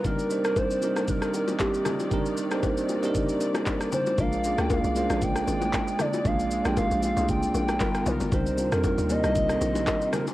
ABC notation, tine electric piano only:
X:1
M:4/4
L:1/16
Q:"Swing 16ths" 1/4=116
K:Cm
V:1 name="Tine electric piano"
[G,CDEB]2 [G,CDEc]3 z [G,CDEB]6 z4 | [G,CDEB]2 z [G,CDEc]3 z [G,CDEB]6 z3 | [A,B,DFB]2 [A,B,_D=DFA]3 z [A,B,_D=DFc]6 z4 | [A,B,DFA]2 z [A,B,DFG]3 z [A,B,DFA]4- [A,B,DFA] [G,=B,^DF^A]3 z |
[G,CDEB]2 [G,CDEF]3 z [G,B,CEB]6 z4 |]